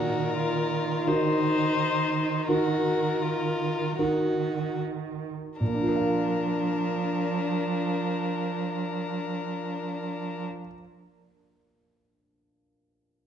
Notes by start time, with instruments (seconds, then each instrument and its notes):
Already playing: grand piano A#2, cello D#3, violin F#4 A#4
0.38 violin F4
1.07 grand piano D#4 F#4 A#4, violin D#4 C5
2.47 grand piano D#4 F#4 A#4, violin F#4 A#4
3.22 violin F4
3.97 cello D#3, grand piano D#4 F#4 A#4, violin F#4
5.60 grand piano A#2, cello F3, violin D4 A#4
5.68 grand piano A#3
5.75 grand piano D4
5.81 grand piano F4
5.89 grand piano A#4
5.96 grand piano F5